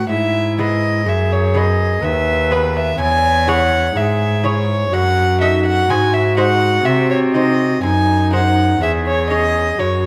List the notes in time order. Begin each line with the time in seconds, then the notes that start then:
0.08 G#2 E4 E5
0.58 B3 G#4 B4 D#5
1.05 F#2 G#4 E5
1.33 C#5
1.54 B3 G#4 B4 D#5
2.02 D#2 B4 E5
2.51 B3 G#4 B4
2.77 E5
2.98 E2 C#5 G#5
3.47 E4 G#4 C#5 F#5
3.95 G#2 G#4 E5
4.44 E4 G#4 C#5
4.91 F#2 F#4 F#5
5.41 D#4 A4 D#5 E5
5.66 F#5
5.89 G#2 G#3 G#5
6.13 E5
6.37 D#4 G#4 C5 F#5
6.85 C3 E5
7.11 C#5
7.34 D#4 G#4 C5 D#5
7.83 F#2 D#4 G#5
8.33 D#4 G#4 C5 F#5
8.81 E2 G#4 E5
9.06 C#5
9.30 C#4 G#4 C#5 D#5
9.79 F#2 F#4 C#5